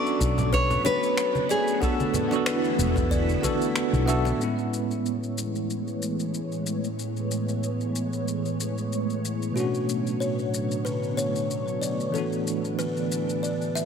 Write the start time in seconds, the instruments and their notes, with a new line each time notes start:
Already playing: string machine F#3 A3 B3, tine electric piano B3 C#4 D4 F#4 A4, nylon-string guitar D5, kalimba C#6
0.06 shaker
0.20 fretless electric bass B1, kick, shaker
0.38 low conga, shaker
0.53 kalimba B4, nylon-string guitar C#5, kick, shaker
0.71 low conga, shaker
0.85 nylon-string guitar B4, kalimba C#5, high bongo, high conga, shaker
1.03 shaker
1.17 finger snap, shaker
1.35 high bongo, high conga, shaker
1.49 nylon-string guitar G#4, kalimba D5, shaker
1.68 shaker
1.80 string machine D3 E3 E4, tine electric piano B3 D4 F#4 A4, kalimba A4, nylon-string guitar A4, kick, shaker
2.00 high conga, shaker
2.14 high conga, low conga, shaker
2.28 tine electric piano B3 D4, high bongo
2.32 tine electric piano F#4 A4, shaker
2.46 kalimba B4, finger snap, shaker
2.64 shaker
2.78 fretless electric bass E1, shaker
2.96 kick, low conga, shaker
3.11 kalimba D5, kick, shaker
3.29 shaker
3.42 tine electric piano B3 D4 F#4 A4, kalimba B4, kick, high bongo, high conga, shaker
3.62 shaker
3.76 finger snap, shaker
3.93 fretless electric bass B1, high conga, shaker
4.06 tine electric piano B3 D4 F#4 A4, kalimba E5, high bongo, shaker
4.25 high bongo, shaker
4.36 tine electric piano A2 G#3 B3, string machine A2 E3 G#3 B3 C#5
4.41 tine electric piano C#4 E4, shaker
4.59 shaker
4.74 shaker
4.91 shaker
5.06 shaker
5.23 shaker
5.38 shaker
5.55 shaker
5.70 shaker
5.88 shaker
6.02 shaker
6.20 shaker
6.34 shaker
6.52 shaker
6.66 shaker
6.84 shaker
6.99 shaker
7.17 shaker
7.31 shaker
7.49 shaker
7.63 shaker
7.81 shaker
7.96 shaker
8.13 shaker
8.28 shaker
8.45 shaker
8.60 shaker
8.78 shaker
8.93 shaker
9.10 shaker
9.25 shaker
9.42 shaker
9.52 tine electric piano B2 A3 C#4, string machine F#3, kalimba F#4
9.57 string machine D3, tine electric piano D4 F#4, shaker
9.74 shaker
9.89 shaker
10.07 shaker
10.20 kalimba C#5, shaker
10.39 shaker
10.54 shaker
10.71 shaker
10.85 kalimba B4, shaker
11.03 shaker
11.17 kalimba C#5, shaker
11.36 shaker
11.51 shaker
11.68 shaker
11.82 kalimba D5, shaker
12.00 shaker
12.10 tine electric piano E3 A3 B3, kalimba A4
12.14 string machine E3 D4, tine electric piano D4 F#4, shaker
12.33 shaker
12.47 shaker
12.65 shaker
12.79 kalimba B4, shaker
12.97 shaker
13.12 shaker
13.29 shaker
13.43 kalimba D5, shaker
13.62 shaker
13.75 kalimba E5, shaker